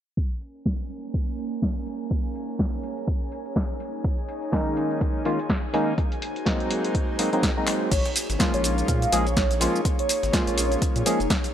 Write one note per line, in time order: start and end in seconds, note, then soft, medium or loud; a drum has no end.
0.17 4.69 A#3 medium
0.17 3.77 C#4 medium
0.17 3.77 A#4 medium
0.17 3.77 G#5 medium
0.17 kick loud
0.17 closed hi-hat medium
0.31 closed hi-hat medium
0.41 11.54 D#4 medium
0.41 open hi-hat loud
0.55 closed hi-hat soft
0.66 kick loud
0.66 snare loud
0.66 closed hi-hat medium
0.90 open hi-hat loud
1.04 closed hi-hat soft
1.14 kick loud
1.14 closed hi-hat medium
1.27 11.54 G#4 medium
1.38 open hi-hat loud
1.52 closed hi-hat soft
1.62 kick loud
1.62 snare loud
1.62 closed hi-hat medium
1.79 5.98 C#5 medium
1.87 open hi-hat loud
2.11 kick loud
2.11 closed hi-hat medium
2.25 closed hi-hat soft
2.35 open hi-hat loud
2.49 closed hi-hat soft
2.59 kick loud
2.59 snare loud
2.59 closed hi-hat medium
2.73 closed hi-hat soft
2.83 open hi-hat loud
2.97 closed hi-hat medium
3.08 kick loud
3.08 closed hi-hat medium
3.32 open hi-hat loud
3.46 closed hi-hat soft
3.56 kick loud
3.56 snare loud
3.56 closed hi-hat medium
3.80 5.96 D#4 medium
3.80 5.96 C#5 medium
3.80 7.88 G#5 medium
3.80 open hi-hat loud
4.04 kick loud
4.04 closed hi-hat medium
4.18 closed hi-hat soft
4.29 open hi-hat loud
4.43 closed hi-hat soft
4.52 5.22 D#3 medium
4.52 5.23 G#3 medium
4.52 5.23 A#3 medium
4.52 5.23 C#4 medium
4.52 5.23 D#4 loud
4.52 kick loud
4.52 snare loud
4.52 closed hi-hat medium
4.67 closed hi-hat soft
4.77 open hi-hat loud
4.91 closed hi-hat soft
5.01 kick loud
5.01 closed hi-hat medium
5.25 5.39 D#3 medium
5.25 5.39 G#3 medium
5.25 5.39 A#3 medium
5.25 5.39 C#4 medium
5.25 5.39 F4 loud
5.25 open hi-hat loud
5.39 closed hi-hat soft
5.50 kick loud
5.50 snare loud
5.50 closed hi-hat medium
5.73 5.93 D#3 medium
5.73 5.93 G#3 medium
5.73 5.93 A#3 medium
5.73 5.93 C#4 medium
5.73 5.94 D#4 loud
5.73 open hi-hat loud
5.98 7.90 F#4 medium
5.98 7.89 A#4 medium
5.98 7.89 C5 medium
5.98 kick loud
5.98 closed hi-hat medium
6.12 closed hi-hat soft
6.22 open hi-hat loud
6.36 closed hi-hat soft
6.45 7.16 F#3 medium
6.45 7.16 G#3 medium
6.45 7.17 A#3 medium
6.45 7.17 C4 medium
6.45 7.17 D#4 loud
6.45 kick loud
6.45 snare loud
6.45 closed hi-hat medium
6.60 closed hi-hat soft
6.71 open hi-hat loud
6.85 closed hi-hat medium
6.95 kick loud
6.95 closed hi-hat medium
7.19 7.29 F#3 medium
7.19 7.29 G#3 medium
7.19 7.30 A#3 medium
7.19 7.30 C4 medium
7.19 7.30 D#4 medium
7.19 open hi-hat loud
7.32 7.51 F#3 loud
7.32 7.51 G#3 medium
7.32 7.51 A#3 medium
7.32 7.51 C4 medium
7.32 7.51 D#4 loud
7.32 closed hi-hat soft
7.43 kick loud
7.43 snare loud
7.43 closed hi-hat medium
7.57 7.90 F#3 medium
7.57 7.90 G#3 medium
7.57 7.90 A#3 medium
7.57 7.90 C4 medium
7.57 7.91 D#4 medium
7.67 clap medium
7.67 open hi-hat loud
7.91 8.01 A#1 loud
7.91 11.51 A#3 medium
7.91 11.51 G#4 medium
7.91 11.54 C#5 medium
7.91 8.11 C#5 loud
7.91 kick loud
7.91 closed hi-hat medium
7.91 crash medium
7.91 shaker soft
8.05 snare soft
8.05 closed hi-hat medium
8.16 snare soft
8.16 closed hi-hat medium
8.16 open hi-hat loud
8.16 shaker medium
8.30 8.36 G#1 medium
8.30 snare soft
8.30 closed hi-hat soft
8.30 shaker soft
8.39 9.10 F3 medium
8.39 9.10 G#3 medium
8.39 9.10 A#3 medium
8.39 9.10 C#4 medium
8.39 9.11 F4 loud
8.39 kick loud
8.39 snare loud
8.39 closed hi-hat medium
8.39 shaker soft
8.54 8.83 A#1 medium
8.54 8.80 C#5 loud
8.54 closed hi-hat medium
8.54 shaker soft
8.64 closed hi-hat medium
8.64 open hi-hat loud
8.64 shaker medium
8.78 closed hi-hat soft
8.78 shaker soft
8.88 9.06 A#2 medium
8.88 9.16 F5 medium
8.88 kick loud
8.88 closed hi-hat medium
8.88 shaker soft
9.02 closed hi-hat soft
9.02 shaker soft
9.11 9.67 A#1 loud
9.11 9.26 F3 medium
9.11 9.26 G#3 medium
9.11 9.26 A#3 medium
9.11 9.26 C#4 medium
9.11 9.26 G#4 medium
9.11 11.54 C#5 medium
9.11 closed hi-hat medium
9.11 open hi-hat loud
9.11 shaker medium
9.26 9.61 C#5 loud
9.26 closed hi-hat soft
9.26 shaker soft
9.37 kick loud
9.37 snare loud
9.37 closed hi-hat medium
9.37 shaker soft
9.51 snare soft
9.51 closed hi-hat medium
9.51 shaker soft
9.60 9.80 F3 loud
9.60 9.80 G#3 medium
9.60 9.80 A#3 medium
9.60 9.81 C#4 medium
9.60 9.81 F4 loud
9.60 closed hi-hat medium
9.60 open hi-hat loud
9.60 shaker medium
9.76 shaker soft
9.85 kick loud
9.85 closed hi-hat medium
9.85 shaker soft
9.99 10.33 C#5 loud
9.99 closed hi-hat medium
10.09 closed hi-hat medium
10.09 open hi-hat loud
10.09 shaker medium
10.23 10.30 G#1 medium
10.23 snare medium
10.23 closed hi-hat soft
10.23 shaker soft
10.33 11.03 F3 medium
10.33 11.03 G#3 medium
10.33 11.04 A#3 medium
10.33 11.04 C#4 medium
10.33 11.04 F4 loud
10.33 kick loud
10.33 snare loud
10.33 closed hi-hat medium
10.33 shaker soft
10.47 10.76 A#1 medium
10.47 10.74 C#5 loud
10.47 closed hi-hat medium
10.47 closed hi-hat soft
10.47 shaker soft
10.58 closed hi-hat medium
10.58 open hi-hat loud
10.58 shaker medium
10.72 closed hi-hat soft
10.72 shaker soft
10.82 kick loud
10.82 closed hi-hat medium
10.82 shaker soft
10.96 11.03 A#2 medium
10.96 closed hi-hat medium
10.96 shaker soft
11.06 11.19 F3 medium
11.06 11.19 G#3 medium
11.06 11.20 A#3 medium
11.06 11.20 C#4 medium
11.06 11.20 G#4 medium
11.06 closed hi-hat medium
11.06 open hi-hat loud
11.06 shaker medium
11.20 11.27 F1 medium
11.20 closed hi-hat soft
11.20 shaker soft
11.30 kick loud
11.30 snare loud
11.30 closed hi-hat medium
11.30 shaker soft
11.44 snare soft
11.44 closed hi-hat medium
11.44 shaker soft